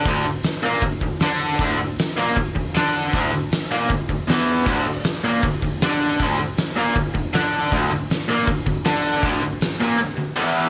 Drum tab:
CC |--------|--------|--------|x-------|
HH |oooooooo|oooooooo|oooooooo|-ooooooo|
SD |--oo--o-|--oo--o-|--o---o-|--o---o-|
BD |o---oo--|o---oo--|o---oo--|o---oo--|

CC |--------|--------|--------|
HH |oooooooo|oooooooo|oooo----|
SD |--o---o-|--oo--o-|--oo----|
BD |o---oo--|o---oo--|o-------|